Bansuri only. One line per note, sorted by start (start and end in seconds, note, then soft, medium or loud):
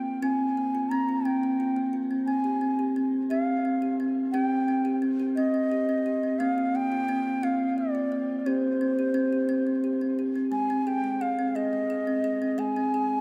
0.00 0.19 G5 medium
0.23 0.91 G#5 medium
0.89 1.27 A#5 medium
1.26 1.94 G5 medium
2.26 2.92 G#5 medium
3.30 3.42 E5 medium
3.42 3.96 F5 medium
4.32 4.98 G5 loud
5.36 6.40 D#5 medium
6.39 6.77 F5 medium
6.76 7.45 G5 loud
7.44 7.78 F5 medium
7.78 8.39 D5 medium
8.39 8.48 D5 medium
8.47 10.18 C5 medium
10.52 10.89 G#5 medium
10.87 11.23 G5 medium
11.21 11.57 F5 medium
11.55 12.60 D#5 medium
12.59 13.21 G#5 loud